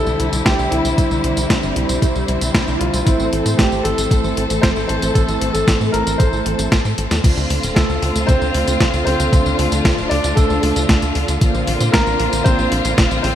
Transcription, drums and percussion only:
0.07 tambourine
0.20 closed hi-hat
0.33 closed hi-hat, tambourine
0.46 kick, snare, closed hi-hat, tambourine
0.59 tambourine
0.72 closed hi-hat
0.85 closed hi-hat, tambourine
0.98 kick, closed hi-hat, tambourine
1.11 tambourine
1.24 closed hi-hat
1.37 closed hi-hat, tambourine
1.50 kick, snare, closed hi-hat, tambourine
1.63 tambourine
1.76 closed hi-hat
1.89 closed hi-hat, tambourine
2.02 kick, closed hi-hat, tambourine
2.15 tambourine
2.28 closed hi-hat
2.41 closed hi-hat, tambourine
2.54 kick, snare, closed hi-hat, tambourine
2.68 tambourine
2.81 closed hi-hat
2.94 closed hi-hat, tambourine
3.07 kick, closed hi-hat, tambourine
3.20 tambourine
3.33 closed hi-hat
3.46 closed hi-hat, tambourine
3.59 kick, snare, closed hi-hat, tambourine
3.72 tambourine
3.85 closed hi-hat
3.98 closed hi-hat, tambourine
4.11 kick, closed hi-hat, tambourine
4.24 tambourine
4.37 closed hi-hat
4.50 closed hi-hat, tambourine
4.63 kick, snare, closed hi-hat, tambourine
4.76 tambourine
4.89 closed hi-hat
5.02 closed hi-hat, tambourine
5.15 kick, closed hi-hat, tambourine
5.29 closed hi-hat, tambourine
5.42 closed hi-hat
5.55 closed hi-hat, tambourine
5.67 kick, snare, closed hi-hat, tambourine
5.81 tambourine
5.94 closed hi-hat
6.07 closed hi-hat, tambourine
6.20 kick, closed hi-hat, tambourine
6.33 tambourine
6.46 closed hi-hat
6.59 closed hi-hat, tambourine
6.72 kick, snare, closed hi-hat, tambourine
6.85 tambourine
6.98 closed hi-hat
7.11 snare, closed hi-hat, tambourine
7.24 kick, closed hi-hat, tambourine, crash
7.37 tambourine
7.50 open hi-hat
7.63 closed hi-hat, tambourine
7.76 kick, snare, closed hi-hat, tambourine
7.90 tambourine
8.02 open hi-hat
8.16 closed hi-hat, tambourine
8.28 kick, closed hi-hat, tambourine
8.42 tambourine
8.54 open hi-hat
8.68 closed hi-hat, tambourine
8.80 kick, snare, closed hi-hat, tambourine
8.94 closed hi-hat, tambourine
9.07 open hi-hat
9.20 closed hi-hat, tambourine
9.33 kick, closed hi-hat, tambourine
9.46 tambourine
9.59 open hi-hat
9.72 closed hi-hat, tambourine
9.85 kick, snare, closed hi-hat, tambourine
9.98 tambourine
10.11 open hi-hat
10.24 closed hi-hat, tambourine
10.37 kick, closed hi-hat, tambourine
10.50 tambourine
10.63 open hi-hat
10.76 closed hi-hat, tambourine
10.89 kick, snare, closed hi-hat, tambourine
11.02 closed hi-hat, tambourine
11.15 open hi-hat
11.28 closed hi-hat, tambourine
11.41 kick, closed hi-hat, tambourine
11.54 tambourine
11.67 open hi-hat
11.80 closed hi-hat, tambourine
11.94 kick, snare, closed hi-hat, tambourine
12.07 tambourine
12.20 open hi-hat
12.33 closed hi-hat, tambourine
12.46 kick, closed hi-hat, tambourine
12.59 tambourine
12.72 open hi-hat
12.85 closed hi-hat, tambourine
12.98 kick, snare, closed hi-hat, tambourine
13.11 closed hi-hat, tambourine
13.24 open hi-hat

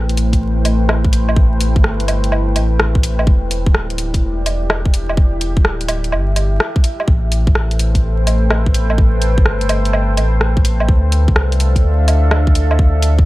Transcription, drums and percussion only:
0.09 closed hi-hat
0.17 closed hi-hat
0.33 kick, closed hi-hat
0.65 closed hi-hat, low woodblock
0.89 cross-stick, low woodblock
1.04 kick
1.13 closed hi-hat
1.29 low woodblock
1.36 kick
1.61 closed hi-hat
1.76 kick
1.84 cross-stick
2.00 closed hi-hat
2.08 closed hi-hat, low woodblock
2.24 closed hi-hat
2.32 low woodblock
2.56 closed hi-hat, low woodblock
2.79 cross-stick
2.95 kick
3.03 closed hi-hat
3.19 low woodblock
3.27 kick
3.51 closed hi-hat
3.66 kick
3.75 cross-stick
3.90 closed hi-hat
3.98 closed hi-hat
4.14 kick, closed hi-hat
4.46 closed hi-hat, low woodblock
4.70 cross-stick, low woodblock
4.85 kick
4.94 closed hi-hat
5.09 low woodblock
5.17 kick
5.41 closed hi-hat
5.57 kick
5.65 cross-stick
5.81 closed hi-hat
5.89 closed hi-hat, low woodblock
6.04 closed hi-hat
6.12 low woodblock
6.36 closed hi-hat, low woodblock
6.60 cross-stick
6.76 kick
6.84 closed hi-hat
7.00 low woodblock
7.08 kick
7.32 closed hi-hat
7.47 kick
7.55 cross-stick
7.71 closed hi-hat
7.79 closed hi-hat
7.95 kick, closed hi-hat
8.27 closed hi-hat, low woodblock
8.50 cross-stick, low woodblock
8.66 kick
8.74 closed hi-hat
8.90 low woodblock
8.98 kick
9.22 closed hi-hat
9.38 kick
9.46 cross-stick
9.61 closed hi-hat
9.69 closed hi-hat, low woodblock
9.85 closed hi-hat
9.93 low woodblock
10.17 closed hi-hat, low woodblock
10.41 cross-stick
10.57 kick
10.65 closed hi-hat
10.80 low woodblock
10.89 kick
11.12 closed hi-hat
11.28 kick
11.36 cross-stick
11.52 closed hi-hat
11.60 closed hi-hat
11.76 kick, closed hi-hat
12.08 closed hi-hat, low woodblock
12.31 cross-stick, low woodblock
12.47 kick
12.55 closed hi-hat
12.71 low woodblock
12.79 kick
13.03 closed hi-hat
13.19 kick

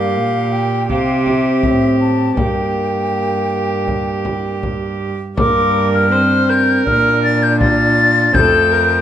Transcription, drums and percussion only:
0.90 frame drum
1.27 frame drum
1.63 frame drum
2.37 frame drum
3.88 frame drum
4.25 frame drum
4.63 frame drum
5.37 frame drum
6.87 frame drum
7.61 frame drum
8.34 frame drum

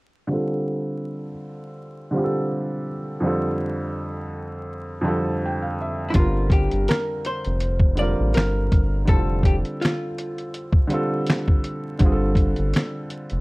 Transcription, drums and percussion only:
6.14 kick, closed hi-hat
6.50 kick, closed hi-hat
6.71 closed hi-hat
6.88 finger snap, snare, closed hi-hat
7.25 closed hi-hat
7.45 closed hi-hat
7.60 closed hi-hat
7.80 kick
7.97 closed hi-hat
8.34 finger snap, snare, closed hi-hat
8.72 kick, closed hi-hat
9.07 kick, closed hi-hat
9.43 kick, closed hi-hat
9.65 closed hi-hat
9.82 finger snap, snare, closed hi-hat
10.18 closed hi-hat
10.38 closed hi-hat
10.54 closed hi-hat
10.72 kick
10.90 closed hi-hat
11.27 finger snap, snare, closed hi-hat
11.48 kick
11.64 closed hi-hat
11.99 kick, closed hi-hat
12.35 kick, closed hi-hat
12.56 closed hi-hat
12.74 finger snap, snare, closed hi-hat
13.10 closed hi-hat
13.30 closed hi-hat

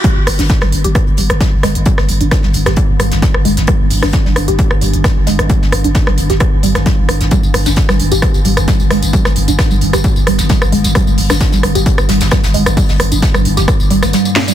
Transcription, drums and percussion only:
0.04 kick, closed hi-hat
0.27 cross-stick, open hi-hat
0.39 snare, closed hi-hat
0.50 kick, snare, closed hi-hat
0.61 cross-stick, snare
0.72 closed hi-hat, open hi-hat
0.84 closed hi-hat
0.95 kick, cross-stick, closed hi-hat
1.07 closed hi-hat
1.17 closed hi-hat, open hi-hat
1.30 cross-stick, closed hi-hat
1.40 kick, snare, closed hi-hat
1.63 cross-stick, snare, closed hi-hat, open hi-hat
1.75 closed hi-hat
1.85 kick, closed hi-hat
1.98 cross-stick, snare
2.08 closed hi-hat, open hi-hat
2.21 closed hi-hat
2.31 kick, cross-stick, snare, closed hi-hat
2.43 snare
2.53 closed hi-hat, open hi-hat
2.66 cross-stick, snare, closed hi-hat
2.76 kick, closed hi-hat
2.99 cross-stick, closed hi-hat, open hi-hat
3.11 snare, closed hi-hat
3.22 kick, snare, closed hi-hat
3.34 cross-stick
3.45 closed hi-hat, open hi-hat
3.57 snare, closed hi-hat
3.67 kick, cross-stick, closed hi-hat
3.90 open hi-hat
4.02 cross-stick, snare, closed hi-hat
4.13 kick, snare, closed hi-hat
4.26 snare
4.36 cross-stick, closed hi-hat, open hi-hat
4.48 closed hi-hat
4.59 kick, closed hi-hat
4.71 cross-stick, closed hi-hat
4.81 closed hi-hat, open hi-hat
4.93 closed hi-hat
5.04 kick, cross-stick, snare, closed hi-hat
5.27 snare, closed hi-hat, open hi-hat
5.39 cross-stick, closed hi-hat
5.49 kick, closed hi-hat
5.63 snare
5.72 cross-stick, closed hi-hat, open hi-hat
5.84 closed hi-hat
5.95 kick, snare, closed hi-hat
6.07 cross-stick, snare
6.18 closed hi-hat, open hi-hat
6.30 snare, closed hi-hat
6.40 kick, cross-stick, closed hi-hat
6.63 closed hi-hat, open hi-hat
6.75 cross-stick, snare, closed hi-hat
6.86 kick, snare, closed hi-hat
7.09 cross-stick, closed hi-hat, open hi-hat
7.21 snare, closed hi-hat
7.31 kick, closed hi-hat, tambourine
7.43 tambourine
7.54 cross-stick, open hi-hat
7.66 snare, closed hi-hat, tambourine
7.76 kick, snare, closed hi-hat, tambourine
7.89 cross-stick, snare, tambourine
8.00 closed hi-hat, open hi-hat
8.12 closed hi-hat, tambourine
8.22 kick, cross-stick, closed hi-hat, tambourine
8.34 closed hi-hat, tambourine
8.45 closed hi-hat, open hi-hat
8.57 cross-stick, closed hi-hat, tambourine
8.68 kick, snare, closed hi-hat, tambourine
8.80 tambourine
8.90 cross-stick, snare, closed hi-hat, open hi-hat
9.02 closed hi-hat, tambourine
9.13 kick, closed hi-hat, tambourine
9.25 cross-stick, snare, tambourine
9.36 closed hi-hat, open hi-hat
9.48 closed hi-hat, tambourine
9.59 kick, cross-stick, snare, closed hi-hat, tambourine
9.70 snare, tambourine
9.81 closed hi-hat, open hi-hat
9.93 cross-stick, snare, closed hi-hat, tambourine
10.04 kick, closed hi-hat, tambourine
10.16 tambourine
10.27 cross-stick, closed hi-hat, open hi-hat
10.38 snare, closed hi-hat, tambourine
10.49 kick, snare, closed hi-hat, tambourine
10.62 cross-stick, tambourine
10.72 closed hi-hat, open hi-hat
10.84 snare, closed hi-hat, tambourine
10.95 kick, cross-stick, closed hi-hat, tambourine
11.07 tambourine
11.18 open hi-hat
11.30 cross-stick, snare, closed hi-hat, tambourine
11.41 kick, snare, closed hi-hat, tambourine
11.52 snare, tambourine
11.63 cross-stick, closed hi-hat, open hi-hat
11.75 closed hi-hat, tambourine
11.86 kick, closed hi-hat, tambourine
11.98 cross-stick, closed hi-hat, tambourine
12.09 snare, closed hi-hat, open hi-hat
12.20 snare, closed hi-hat, tambourine
12.31 kick, cross-stick, snare, closed hi-hat, tambourine
12.44 snare, closed hi-hat, tambourine
12.54 closed hi-hat, open hi-hat
12.66 cross-stick, closed hi-hat, tambourine
12.77 kick, closed hi-hat, open hi-hat, tambourine
12.89 snare, tambourine
13.00 cross-stick, closed hi-hat, open hi-hat
13.12 closed hi-hat, tambourine
13.22 kick, snare, closed hi-hat, tambourine
13.34 cross-stick, snare, tambourine
13.45 closed hi-hat, open hi-hat
13.57 snare, closed hi-hat, tambourine
13.68 kick, cross-stick, closed hi-hat, tambourine
13.80 tambourine
13.90 closed hi-hat, open hi-hat
14.03 cross-stick, snare, closed hi-hat, tambourine
14.13 snare, closed hi-hat, tambourine
14.25 tambourine
14.36 snare, closed hi-hat, open hi-hat
14.48 snare, closed hi-hat, tambourine

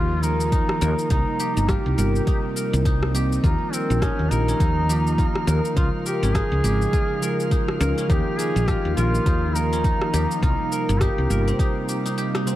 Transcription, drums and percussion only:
0.23 shaker
0.40 shaker
0.52 kick, shaker
0.69 cross-stick
0.82 shaker
0.99 shaker
1.11 kick, shaker
1.40 shaker
1.57 shaker
1.69 kick, cross-stick, shaker
1.98 shaker
2.16 shaker
2.27 kick, shaker
2.57 shaker
2.74 shaker
2.85 kick, shaker
3.03 cross-stick
3.15 shaker
3.32 shaker
3.44 kick, shaker
3.73 shaker
3.91 shaker
4.02 kick, cross-stick, shaker
4.32 shaker
4.49 shaker
4.60 kick, shaker
4.90 shaker
5.07 shaker
5.18 kick, shaker
5.35 cross-stick
5.48 shaker
5.65 shaker
5.77 kick, shaker
6.06 shaker
6.23 shaker
6.35 kick, cross-stick, shaker
6.65 shaker
6.82 shaker
6.93 kick, shaker
7.23 shaker
7.40 shaker
7.51 kick, shaker
7.68 cross-stick
7.81 shaker
7.98 shaker
8.10 kick, shaker
8.39 shaker
8.56 shaker
8.68 kick, cross-stick, shaker
8.98 shaker
9.15 shaker
9.26 kick, shaker
9.56 shaker
9.73 shaker
9.84 kick, shaker
10.01 cross-stick
10.14 shaker
10.31 shaker
10.43 kick, shaker
10.72 shaker
10.89 shaker
11.01 kick, cross-stick, shaker
11.31 shaker
11.48 shaker
11.59 kick, shaker
11.89 shaker
12.06 shaker
12.18 shaker
12.35 cross-stick
12.47 shaker

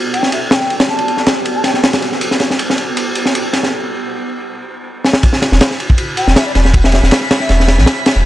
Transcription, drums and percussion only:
0.14 ride
0.23 snare
0.32 ride
0.51 snare, ride
0.61 snare
0.70 ride
0.80 snare, ride
0.89 snare
0.99 ride
1.08 ride
1.17 snare
1.26 snare, ride
1.45 ride
1.64 snare, ride
1.74 snare
1.83 snare, ride
1.93 snare, ride
2.02 snare, ride
2.12 snare
2.21 ride
2.31 snare
2.40 snare, ride
2.50 snare
2.59 ride
2.70 snare
2.78 ride
2.97 ride
3.15 ride
3.26 snare
3.35 ride
3.53 snare, ride
3.63 snare
5.05 snare
5.13 snare
5.23 kick, ride
5.33 snare
5.42 snare, ride
5.52 snare
5.61 snare, ride
5.71 snare
5.80 ride
5.90 kick
5.98 ride
6.17 ride
6.28 snare
6.36 snare, ride
6.55 snare, ride
6.65 snare
6.74 kick, ride
6.84 snare
6.92 snare, ride
7.03 snare
7.11 snare, ride
7.21 snare
7.31 snare, ride
7.40 snare
7.49 snare, ride
7.60 snare
7.68 snare, ride
7.78 snare
7.86 snare, ride
8.06 snare, ride
8.15 snare

